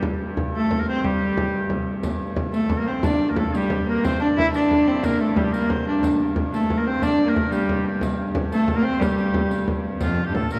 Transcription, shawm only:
0.54 A4
0.80 A#4
0.88 C5
1.05 G4
2.54 A4
2.79 A#4
2.87 C5
3.04 D5
3.30 A#4
3.38 A4
3.56 G4
3.89 A#4
4.04 C5
4.22 D5
4.39 E5
4.55 D5
5.05 A#4
5.21 A4
5.37 G4
5.53 A#4
5.70 C5
5.87 D5
6.54 A4
6.78 A#4
6.87 C5
7.04 D5
7.29 A#4
7.53 G4
7.87 G4
8.52 A4
8.77 A#4
8.84 C5
9.01 G4
10.02 F4
10.26 G4
10.35 A4
10.52 A#4

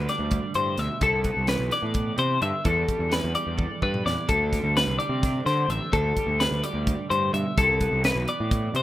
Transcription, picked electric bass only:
0.19 D2
0.55 G2
0.78 D2
1.01 C2
1.37 C2
1.59 B1
1.83 A2
2.18 C3
2.42 G2
2.65 E2
2.99 E2
3.24 E2
3.47 E2
3.82 G2
4.06 E2
4.29 D2
4.64 D2
4.87 C2
5.09 C3
5.46 D3
5.68 A1
5.93 D2
6.27 D2
6.51 D2
6.74 D2
7.11 G2
7.34 G2
7.57 C2
7.92 C2
8.15 B1
8.40 A2
8.74 C3

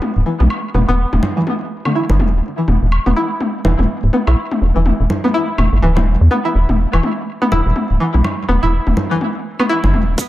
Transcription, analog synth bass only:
0.16 D1
0.40 B1
0.74 E1
0.89 E1
1.13 E1
2.10 G1
2.20 E1
2.34 D1
2.68 E1
2.82 E1
3.06 E1
3.65 E1
3.79 E1
4.03 D1
4.27 B1
4.62 E1
4.76 E1
5.00 E1
5.58 E1
5.72 G1
5.83 D1
6.07 E1
6.21 E2
6.55 E1
6.69 E1
6.93 E1
7.52 E1
7.66 E1
7.90 D1
8.14 B1
8.49 E1
8.63 E1
8.87 E1
9.84 G1
9.94 E1
10.08 D1

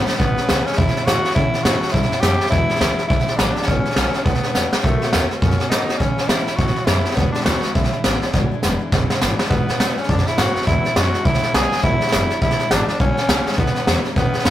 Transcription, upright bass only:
0.08 muted upright bass stroke
0.20 A1
0.38 muted upright bass stroke
0.50 C#2
0.67 muted upright bass stroke
0.78 E2
0.95 muted upright bass stroke
1.07 A2
1.24 muted upright bass stroke
1.36 C#3
1.53 muted upright bass stroke
1.65 A2
1.82 muted upright bass stroke
1.94 G2
2.11 muted upright bass stroke
2.22 F#2
2.52 E2
2.70 muted upright bass stroke
2.80 C#2
2.98 muted upright bass stroke
3.10 B1
3.27 muted upright bass stroke
3.39 A1
3.57 muted upright bass stroke
3.68 G#1
3.86 muted upright bass stroke
3.97 B1
4.26 D2
4.43 muted upright bass stroke
4.56 E2
4.74 muted upright bass stroke
4.84 B1
5.14 D#2
5.43 F#2
5.60 muted upright bass stroke
5.72 G#2
5.89 muted upright bass stroke
6.00 A2
6.19 muted upright bass stroke
6.30 B2
6.49 muted upright bass stroke
6.59 A2
6.76 muted upright bass stroke
6.87 F#2
7.06 muted upright bass stroke
7.17 E2
7.35 muted upright bass stroke
7.47 D2
7.64 muted upright bass stroke
7.75 B1
8.05 A1
8.23 muted upright bass stroke
8.34 G#1
8.52 muted upright bass stroke
8.64 E1
8.92 F#1
9.10 muted upright bass stroke
9.22 G#1
9.40 muted upright bass stroke
9.51 G#2
9.69 muted upright bass stroke
9.80 E2
9.98 muted upright bass stroke
10.09 F#2
10.27 muted upright bass stroke
10.38 G#2
10.56 muted upright bass stroke
10.67 E2
10.85 muted upright bass stroke
10.96 F#2
11.13 muted upright bass stroke
11.26 D2
11.43 muted upright bass stroke
11.54 B1
11.73 muted upright bass stroke
11.84 G#1
12.02 muted upright bass stroke
12.13 F#1
12.31 muted upright bass stroke
12.42 E1
12.59 muted upright bass stroke
12.71 G#1
12.88 muted upright bass stroke
13.00 B1
13.18 muted upright bass stroke
13.29 C#2
13.46 muted upright bass stroke
13.58 D2
13.88 E2
14.05 muted upright bass stroke
14.16 A2
14.34 muted upright bass stroke
14.46 F#2

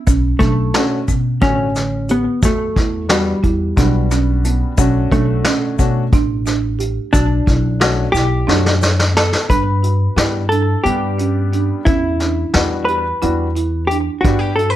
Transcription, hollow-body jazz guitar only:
0.39 A3
1.42 C#4
2.11 B3
2.45 A3
3.12 G3
5.12 A3
7.13 D4
8.12 G4
9.17 A4
9.50 B4
10.49 A4
10.84 G4
11.85 E4
12.85 B4
13.87 G4
14.21 F#4
14.39 G4
14.56 A4
14.70 B4

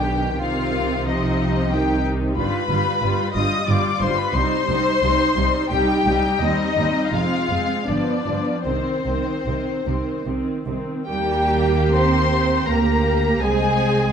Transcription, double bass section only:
Already playing: B1
0.40 C2
2.36 G1
2.69 G1
3.02 G1
3.35 G1
3.68 G1
4.01 G1
4.35 C2
4.69 C2
5.02 C2
5.37 C2
5.71 C2
6.05 C2
6.40 D#2
6.76 D#2
7.13 F1
7.50 F1
7.88 G1
8.26 G1
8.66 C2
9.06 C2
9.46 C2
9.86 C2
10.26 C2
10.67 C2
11.07 D#2
12.68 D2
13.43 C2

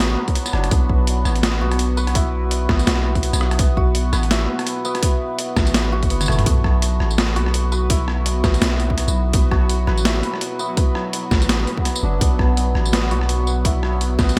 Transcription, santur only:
Already playing: F#3 E4 F#4 B4
0.00 B3
0.53 D4
0.72 B3
1.43 B3
1.61 F#4
1.97 B4
2.15 E4
2.69 B3
2.87 B3
3.59 B3
3.77 F#4
4.13 B4
4.31 E4
4.85 B3
5.03 B3
5.75 B3
5.92 F#4
6.11 B3
6.28 A3
6.47 B3
7.18 B3
7.36 F#4
7.72 B4
7.90 E4
8.44 B3
8.62 B3
9.34 B3
9.51 F#4
9.87 B4
10.05 E4
10.59 B3
10.77 B3
11.49 B3
12.03 D4
12.21 B3
12.93 B3
13.11 F#4
13.47 B3
13.65 E4
14.19 B3

